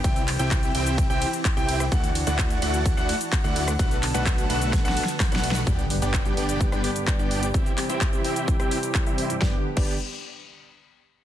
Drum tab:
CC |------------------------------------------------|------------------------------------------------|------------------------------------------------|------------------------------------------------|
RD |x-----x-----x-----x-----x-----x-----x-----x-----|x-----x-----x-----x-----x-----x-----x-----x-----|x-----x-----x-----x-----x-----x-----x-----x-----|------------------------------------------------|
HH |x--x--o--x--x--x--o--x--x-----o--x--x-----o--x--|x--x--o--x--x--x--o--x--x-----o--x--x-----o--x--|x--x--o--x--x--x--o--x--x--x--o--x--x--x--o--x--|x--x--o--x--x--x--o--x--x--x--o--x--x--x--o--x--|
SH |x--x-----x--x--x-----x--x--x-----x--x--x-----x--|x--x-----x--x--x-----x--x--x-----x--x--x-----x--|x--x-----x--x--x-----x--x--x-----x--x--x-----x--|x--x-----x--x--x-----x--x--x-----x--x--x-----x--|
CP |------x-----x-----------------------x-----------|------------x-----------------------x-----------|------x-----x-----------------------x-----------|------------x-----------------------x-----------|
SD |---------------------------------------------r--|---------------------------------------------r--|------------------------o---o---o---o---o---o---|---------------------------r--------------------|
BD |o-----------o-----------o-----------o-----------|o-----------o-----------o-----------o-----------|o-----------o-----------o-----------o-----------|o-----------o-----------o-----------o-----------|

CC |------------------------------------------------|---------x--------------------------------------|
RD |------------------------------------------------|------------------------------------------------|
HH |x--x--o--x--x--x--o--x--x--x--o--x--x--x--o--x--|------------------------------------------------|
SH |x--x-----x--x--x-----x--x--x-----x--x--x-----x--|------------------------------------------------|
CP |------x-----x-----------------------x-----------|------------------------------------------------|
SD |---------------------------r--------------------|o-----------------------------------------------|
BD |o-----------o-----------o-----------o-----------|o--------o--------------------------------------|